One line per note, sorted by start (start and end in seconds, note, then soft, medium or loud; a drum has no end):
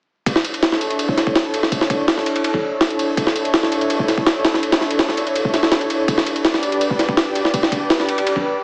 0.26 1.33 D4 loud
0.26 1.33 E4 medium
0.26 1.33 A4 medium
0.26 1.33 C#5 loud
0.26 kick loud
0.26 ride medium
0.36 snare medium
0.45 ride medium
0.54 ride soft
0.63 snare loud
0.63 ride medium
0.72 snare medium
0.81 ride medium
0.91 ride soft
0.99 ride medium
1.09 kick medium
1.17 snare soft
1.17 ride medium
1.27 kick medium
1.35 1.70 D4 loud
1.35 1.70 E4 medium
1.35 1.70 A4 medium
1.35 1.70 C#5 loud
1.35 snare loud
1.35 ride medium
1.54 ride medium
1.63 snare soft
1.72 2.79 D4 loud
1.72 2.79 E4 loud
1.72 2.79 A4 medium
1.72 2.79 C#5 loud
1.72 kick loud
1.72 ride medium
1.81 snare soft
1.90 kick medium
1.90 ride medium
2.08 snare loud
2.08 ride medium
2.18 snare soft
2.26 ride medium
2.36 ride soft
2.44 ride medium
2.54 kick medium
2.81 3.15 D4 loud
2.81 3.15 E4 medium
2.81 3.15 A4 medium
2.81 3.15 C#5 loud
2.81 snare loud
2.81 ride medium
2.90 ride soft
2.99 ride medium
3.17 4.25 D4 loud
3.17 4.25 E4 medium
3.17 4.25 A4 medium
3.17 4.25 C#5 loud
3.17 kick loud
3.17 ride medium
3.27 snare medium
3.36 ride medium
3.45 ride soft
3.54 snare loud
3.54 ride medium
3.63 snare medium
3.72 ride medium
3.81 ride soft
3.90 ride medium
4.00 kick medium
4.08 snare soft
4.08 ride medium
4.18 kick medium
4.27 4.61 D4 loud
4.27 4.61 E4 medium
4.27 4.61 A4 medium
4.27 4.61 C#5 loud
4.27 snare loud
4.27 ride medium
4.45 snare loud
4.45 ride medium
4.54 snare soft
4.63 5.52 D4 loud
4.63 5.52 E4 medium
4.63 5.52 A4 loud
4.63 5.52 C#5 loud
4.63 ride medium
4.72 snare loud
4.72 ride medium
4.81 snare soft
4.90 ride medium
4.99 snare loud
4.99 ride medium
5.09 snare soft
5.17 ride medium
5.27 ride soft
5.35 ride medium
5.45 kick medium
5.54 5.79 D4 medium
5.54 5.79 E4 medium
5.54 5.79 A4 medium
5.54 5.79 C#5 loud
5.54 snare soft
5.54 ride medium
5.63 snare medium
5.72 snare loud
5.72 ride medium
5.81 5.89 D4 medium
5.81 5.88 E4 medium
5.81 5.88 A4 medium
5.81 5.89 C#5 medium
5.81 ride soft
5.90 6.06 D4 medium
5.90 6.06 E4 medium
5.90 6.06 A4 medium
5.90 6.06 C#5 medium
5.90 ride medium
6.08 7.15 D4 loud
6.08 7.16 G4 medium
6.08 7.16 B4 loud
6.08 7.16 D5 loud
6.08 kick loud
6.08 ride medium
6.18 snare medium
6.26 ride medium
6.36 ride soft
6.45 snare loud
6.45 ride medium
6.54 snare medium
6.63 ride medium
6.72 ride soft
6.81 ride medium
6.90 kick medium
6.99 snare soft
6.99 ride medium
7.09 kick medium
7.17 7.52 D4 loud
7.17 7.52 G4 medium
7.17 7.52 B4 medium
7.17 7.52 D5 loud
7.17 snare loud
7.17 ride medium
7.35 ride medium
7.45 snare soft
7.54 8.61 D4 loud
7.54 8.61 G4 medium
7.54 8.61 B4 medium
7.54 8.61 D5 loud
7.54 kick loud
7.54 ride medium
7.63 snare medium
7.72 kick medium
7.72 ride medium
7.90 snare loud
7.90 ride medium
8.00 snare soft
8.09 ride medium
8.18 ride soft
8.27 ride medium
8.36 kick medium